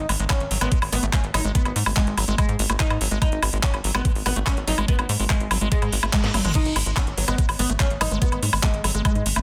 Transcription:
0.09 G#1 G#3, open hi-hat, high woodblock
0.20 G#1 G#3, closed hi-hat
0.30 B3 C#4, kick, clap, closed hi-hat, high woodblock
0.40 G#1, closed hi-hat
0.51 G#1 F#3, open hi-hat
0.61 G#1 G#3 B3, closed hi-hat, high woodblock
0.72 kick, closed hi-hat
0.82 G#1, open hi-hat, high woodblock
0.92 G#1 G#3 B3, open hi-hat
1.03 G#1 A3, closed hi-hat
1.13 G#3 C#4, kick, clap, closed hi-hat, high woodblock
1.24 G#1, closed hi-hat
1.34 G#1 F#3 D#4, open hi-hat, high woodblock
1.45 G#1 G#3, closed hi-hat
1.55 B3, kick, closed hi-hat
1.65 G#1, closed hi-hat, high woodblock
1.76 G#2 G#3, open hi-hat
1.86 G#1 G#3, high woodblock
1.97 G#3 B3, kick, clap, closed hi-hat
2.07 G#1, closed hi-hat
2.17 G#1 F#3, open hi-hat, high woodblock
2.28 G#1 G#3, closed hi-hat
2.38 G#3, kick, closed hi-hat, high woodblock
2.49 G#2, closed hi-hat
2.59 G#1 G#3, open hi-hat
2.70 G#1 A3, high woodblock
2.80 G#3 D#4, kick, clap, closed hi-hat
2.90 G#2, closed hi-hat, high woodblock
3.01 G#1 F#3, open hi-hat
3.11 G#1 G#3, closed hi-hat
3.22 G#3 D#4, kick, closed hi-hat, high woodblock
3.32 G#1, closed hi-hat
3.42 G#1 G#3, open hi-hat, high woodblock
3.53 G#1 G#3, closed hi-hat
3.63 B3 C#4, kick, clap, closed hi-hat
3.74 G#1, closed hi-hat, high woodblock
3.84 G#1 F#3, open hi-hat
3.95 G#1 G#3 B3, closed hi-hat, high woodblock
4.05 G#3, kick, closed hi-hat
4.15 G#1, open hi-hat
4.26 G#1 G#3 B3, open hi-hat, high woodblock
4.36 G#1 A3, closed hi-hat
4.47 G#3 C#4, kick, clap, closed hi-hat, high woodblock
4.57 G#1, closed hi-hat
4.67 G#1 F#3 D#4, open hi-hat
4.78 G#1 G#3, closed hi-hat, high woodblock
4.88 G#3 B3, kick, closed hi-hat
4.99 G#1, closed hi-hat, high woodblock
5.09 G#2 G#3, open hi-hat
5.20 G#1 G#3, open hi-hat
5.30 G#3 B3, kick, clap, closed hi-hat, high woodblock
5.40 G#1, closed hi-hat
5.51 G#1 F#3, open hi-hat, high woodblock
5.61 G#1 G#3, closed hi-hat
5.72 G#3, kick, closed hi-hat, reverse cymbal
5.82 G#2, closed hi-hat, high woodblock
5.92 G#1 G#3, open hi-hat
6.03 G#1 A3, high woodblock
6.13 G#3, kick, clap, closed hi-hat
6.24 G#2, snare, closed hi-hat
6.34 G#1 F#3, open hi-hat, mid tom, high woodblock
6.45 G#1 G#3, closed hi-hat, mid tom
6.55 G#3 D#4, kick, closed hi-hat, crash
6.65 G#1, closed hi-hat
6.76 G#1 G#3, open hi-hat, high woodblock
6.86 G#1 G#3, closed hi-hat
6.97 B3 C#4, kick, clap, closed hi-hat, high woodblock
7.07 G#1, closed hi-hat
7.17 G#1 F#3 B3, open hi-hat
7.28 G#1 G#3 B3, closed hi-hat, high woodblock
7.38 kick, closed hi-hat
7.49 G#1, open hi-hat, high woodblock
7.59 G#1 G#3 B3, open hi-hat
7.70 G#1 A3, closed hi-hat
7.80 G#3 C#4, kick, clap, closed hi-hat, high woodblock
7.90 G#1, closed hi-hat
8.01 G#1 F#3 B3 D#4, open hi-hat, high woodblock
8.11 G#1 G#3 B3, closed hi-hat
8.22 B3, kick, closed hi-hat
8.32 G#1, closed hi-hat, high woodblock
8.43 G#2 G#3, open hi-hat
8.53 G#1 G#3, high woodblock
8.63 G#3 B3, kick, clap
8.74 G#1, closed hi-hat
8.84 G#1 F#3 G#3, open hi-hat, high woodblock
8.95 G#1 G#3, closed hi-hat
9.05 G#3, kick, closed hi-hat, high woodblock
9.15 G#2, closed hi-hat
9.26 G#1 G#3, open hi-hat
9.36 G#1 A3, high woodblock

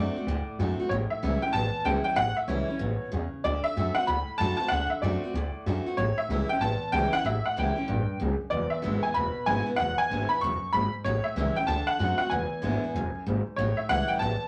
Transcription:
Already playing: F#2 D3 A3 C4 F#4 D5
0.16 C4 F#4, muted upright bass stroke
0.27 D2 A2
0.47 muted upright bass stroke
0.59 F#2 D3 A3 C4 F#4
0.80 C4 F#4, muted upright bass stroke
0.89 A1 A2 C#5
1.10 E5, muted upright bass stroke
1.23 C#2 E3 G3 C#4 E4
1.42 C#4 E4 G5, muted upright bass stroke
1.53 A1 E2 A5
1.74 muted upright bass stroke
1.84 C#2 E3 G3 C#4 E4 G5
2.04 G5, muted upright bass stroke
2.16 A1 A2 F#5
2.37 E5, muted upright bass stroke
2.48 C#2 E3 G3 C#4 E4 C#5
2.68 C#4 E4, muted upright bass stroke
2.79 A1 B2
3.02 muted upright bass stroke
3.12 E2 C#3
3.33 muted upright bass stroke
3.44 D2 D3 D5
3.64 E5, muted upright bass stroke
3.77 F#2 D3 A3 C4 F#4
3.95 C4 F#4 F#5, muted upright bass stroke
4.07 D2 A2 B5
4.28 muted upright bass stroke
4.38 F#2 D3 A3 C4 F#4 A5
4.57 C4 F#4 A5, muted upright bass stroke
4.68 D2 D3 F#5
4.90 E5, muted upright bass stroke
5.02 F#2 D3 A3 C4 F#4 D5
5.23 C4 F#4, muted upright bass stroke
5.34 D2 A2
5.55 muted upright bass stroke
5.66 F#2 D3 A3 C4 F#4
5.86 C4 F#4, muted upright bass stroke
5.97 A1 A2 C#5
6.17 E5, muted upright bass stroke
6.29 C#2 E3 G3 C#4 E4
6.49 C#4 E4 G5, muted upright bass stroke
6.60 A1 E2 A5
6.81 muted upright bass stroke
6.92 C#2 E3 G3 C#4 E4 G5
7.12 C#4 E4 F#5, muted upright bass stroke
7.24 A1 A2 E5
7.45 F#5, muted upright bass stroke
7.56 C#2 E3 G3 C#4 E4 G5
7.76 C#4 E4, muted upright bass stroke
7.88 A1 G2
8.09 muted upright bass stroke
8.20 C#2 F#2
8.41 muted upright bass stroke
8.50 E1 E2 D5
8.70 E5, muted upright bass stroke
8.82 G#1 D3 G#3 B3 E4
9.03 B3 E4 G#5, muted upright bass stroke
9.14 E1 B2 B5
9.36 muted upright bass stroke
9.46 G#1 D3 G#3 B3 E4 G#5
9.66 B3 E4, muted upright bass stroke
9.76 E1 E2 F#5
9.98 G#5, muted upright bass stroke
10.10 G#1 D3 G#3 B3 E4
10.29 B3 E4 B5, muted upright bass stroke
10.41 E1 F#2 C#6
10.62 muted upright bass stroke
10.73 G#1 G#2 B5
10.93 muted upright bass stroke
11.04 A1 A2 C#5
11.24 E5, muted upright bass stroke
11.36 C#2 E3 G3 C#4 E4
11.55 C#4 E4 G5, muted upright bass stroke
11.67 D2 D3 A5
11.87 F#5, muted upright bass stroke
11.99 F#2 D3 A3 C4 F#4
12.18 C4 F#4 F#5, muted upright bass stroke
12.30 E1 E2 G#5
12.52 muted upright bass stroke
12.62 G#1 D3 G#3 B3 E4
12.83 B3 E4, muted upright bass stroke
12.94 E1 F#2
13.15 muted upright bass stroke
13.26 G#1 G#2
13.46 muted upright bass stroke
13.56 A1 A2 C#5
13.77 E5, muted upright bass stroke
13.89 C#2 E3 G3 C#4 E4 F#5
14.08 G5, muted upright bass stroke
14.19 A1 E2 A5
14.41 muted upright bass stroke

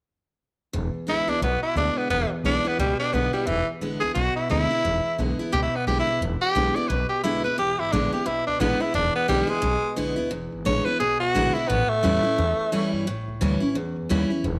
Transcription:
0.73 E1 E2
0.94 muted upright bass stroke
1.07 A1 D3 G#3 B3 E4
1.27 C#2 B3 D4 E4
1.42 B1 B2 B3
1.63 E4
1.76 D2 D3 G#3 B3 D4 E4
1.97 B3
2.10 E1 E2 B3
2.44 B1 D3 G#3 B3 D4 E4
2.65 B3 E4
2.79 C#2 B2 G3
3.00 D4
3.13 B1 D3 G#3 B3 E4
3.33 G3 B3 E4
3.46 E1 E2 E3
3.81 A1 D3 G#3 B3 E4
4.00 C#2 B3 E4 G#4
4.14 B1 B2 F#4
4.36 E4
4.49 D2 D3 G#3 B3 E4
4.70 B3 E4
4.85 E1 E2
5.18 B1 D3 G#3 B3 E4
5.39 B3 E4, muted upright bass stroke
5.52 C#2 B2 G4
5.62 E4
5.73 B3, muted upright bass stroke
5.87 B1 D3 G#3 B3 E4 G4
5.99 E4
6.07 B3 E4
6.21 E1 E2
6.42 G4
6.55 B1 D3 G#3 B3 E4
6.76 B3 E4 D5
6.88 B1 B2 B4
7.09 G4
7.23 B1 D3 G#3 B3 E4
7.44 D2 B3 E4 B4
7.58 E1 E2 G4
7.79 G#1 E4
7.92 A1 D3 G#3 B3 D4 E4
8.12 B3 E4 G4
8.26 B1 B2 E4
8.47 C#2 D4
8.60 A1 D3 G#3 B3 E4
8.80 B3 E4, muted upright bass stroke
8.94 E1 E2 D4
9.15 B3
9.28 B1 D3 G3 G#3 B3 E4
9.47 G#3 B3 E4
9.62 B1 B2
9.96 B1 D3 G#3 B3 E4
10.16 D2 B3 E4
10.31 E1 E2
10.52 G#1
10.65 A1 D3 G#3 B3 E4 C#5
10.85 B3 E4 B4, muted upright bass stroke
11.00 B1 B2 G#4
11.20 C#2 F#4
11.35 A1 D3 G#3 B3 E4
11.54 B3 E4, muted upright bass stroke
11.68 A1 A2 B3
11.89 A3, muted upright bass stroke
12.03 E2 E3 G3 C#4 E4
12.23 C#4 E4, muted upright bass stroke
12.38 E2
12.59 muted upright bass stroke
12.72 E2 E3 G3 C#4 E4
12.93 G2
13.07 A1 A2
13.28 C#2
13.41 D2 E3 G3 C#4 E4
13.60 C#4 E4, muted upright bass stroke
13.75 E2
13.96 F#2
14.09 D#2 E3 G3 C#4 E4
14.30 C#4 E4, muted upright bass stroke
14.44 E1 E2

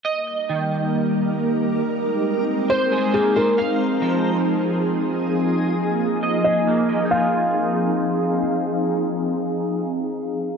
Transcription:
0.05 G3 A#3 D#4 G4 A#4 D#5 D6
0.49 D#3
1.81 G#3 C4 G#4 C5 A#5
2.70 C5
2.92 G#4
3.14 A#3 G#4
3.36 A#4 C5
3.58 F3 F4 G#4 D#5 F5 G#5
4.02 F3
5.35 F3 A#3 D#4 A#4 G#5
6.23 D#5
6.44 G#4 D#5
6.67 A#3
6.89 D#5
7.05 D#4
7.11 F3 C4 D#4 F4 G#4 F5
7.17 G#4

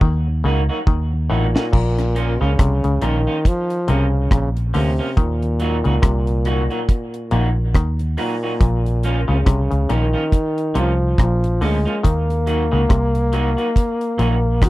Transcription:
0.01 D#2 D#3, kick
0.44 C#2 C#3 F#3 A#3 D#4 F#4
0.69 F#3 A#3 D#4 F#4
0.87 D#2 D#3, kick
1.30 A1 A2 A#2 F#3 A#3 D#4 F#4
1.55 F#3 A#3 D#4 F#4, snare
1.73 A#1 A#2, kick, crash
1.98 cross-stick, closed hi-hat
2.15 F3 A#3 C#4 F4, closed hi-hat
2.41 C#2 C#3 F3 A#3 C#4 F4
2.59 C2 C3, kick, cross-stick, closed hi-hat
2.84 C#2 C#3, closed hi-hat
3.02 A#1 A#2 D#3 F3 A#3 C#4 F4, closed hi-hat
3.27 F3 A#3 C#4 F4
3.45 F3, kick, closed hi-hat
3.70 closed hi-hat
3.88 C2 C3 C#3 F3 A#3 C#4 F4, closed hi-hat
4.31 A#1 A#2 C#3, kick, cross-stick, closed hi-hat
4.57 closed hi-hat
4.74 D2 C3 D3 F3 A#3 C#4 F4, open hi-hat
4.99 F3 A#3 C#4 F4
5.17 D#2 A#2 D#3, kick, closed hi-hat
5.42 closed hi-hat
5.60 F#3 A#3 D#4 F#4, closed hi-hat
5.84 C#2 C#3 F#3 A#3 D#4 F#4, closed hi-hat
6.02 C2 C3, kick, cross-stick, closed hi-hat
6.27 closed hi-hat
6.45 F#3 A#3 D#4 F#4, closed hi-hat
6.70 F#3 A#3 D#4 F#4, closed hi-hat
6.89 kick, closed hi-hat
7.14 closed hi-hat
7.31 A#1 A#2 F#3 A#3 D#4 F#4, closed hi-hat
7.74 D#2 D#3, kick, cross-stick, closed hi-hat
7.99 closed hi-hat
8.17 A#2 F#3 A#3 D#4 F#4, open hi-hat
8.43 F#3 A#3 D#4 F#4
8.60 A#1 A#2, kick, closed hi-hat
8.86 closed hi-hat
9.03 F3 A#3 C#4 F4, closed hi-hat
9.28 C#2 C#3 F3 A#3 C#4 F4
9.46 C2 C3, kick, cross-stick, closed hi-hat
9.71 C#2 C#3, closed hi-hat
9.89 A#1 A#2 D#3 F3 A#3 C#4 F4, closed hi-hat
10.13 F3 A#3 C#4 F4
10.32 kick, closed hi-hat
10.58 closed hi-hat
10.74 C2 C3 F3 A#3 C#4 F4, closed hi-hat
10.79 F3
11.18 A#1 A#2 F3, kick, cross-stick, closed hi-hat
11.44 closed hi-hat
11.61 D2 D3 F3 G#3 A#3 C#4 F4, open hi-hat
11.85 F3 A#3 C#4 F4, closed hi-hat
12.03 D#2 D#3 A#3, kick, closed hi-hat
12.30 closed hi-hat
12.47 F#3 A#3 D#4 F#4, closed hi-hat
12.72 C#2 C#3 F#3 A#3 D#4 F#4
12.89 C2 C3, kick, cross-stick, closed hi-hat
13.15 closed hi-hat
13.32 F#3 A#3 D#4 F#4, closed hi-hat
13.57 F#3 A#3 D#4 F#4, closed hi-hat
13.76 kick, closed hi-hat
14.01 closed hi-hat
14.18 A#1 A#2 F#3 A#3 D#4 F#4, closed hi-hat
14.62 D#2 D#3 F#4, kick, cross-stick, closed hi-hat

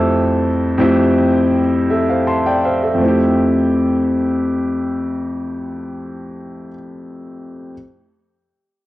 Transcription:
Already playing: F2 A3 C4 E4 G4 A4
0.78 F2 A3 C4 E4 G4
1.90 A4 E5
2.10 C5 F5
2.27 E5 A5 C6
2.46 D5 G5
2.65 C5 E5 F5
2.83 A4 E5
2.95 F2 A3
3.01 C4 E4
3.08 G4

